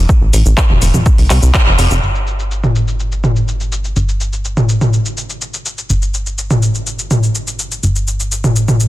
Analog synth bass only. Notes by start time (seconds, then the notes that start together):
0.21 A1
0.33 A1
0.46 A1
0.70 F1
0.82 F1
0.94 F1
1.18 C2
1.30 C2
1.43 C2
1.67 F1
1.79 F1
1.91 F1
2.03 G1
3.96 G1
5.90 G1
7.83 G1